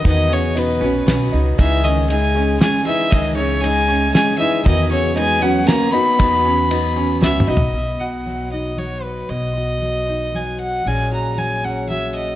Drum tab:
RD |x--x--x--|x--x--x--|x--x--x--|x--x--x--|
SD |------o--|------o--|------o--|------o--|
T2 |---------|---------|---------|---------|
FT |---------|---------|---------|---------|
BD |o--------|o--------|o--------|o--------|

RD |x--x-----|---------|---------|---------|
SD |------o--|---------|---------|---------|
T2 |-------o-|---------|---------|---------|
FT |--------o|---------|---------|---------|
BD |o--------|---------|---------|---------|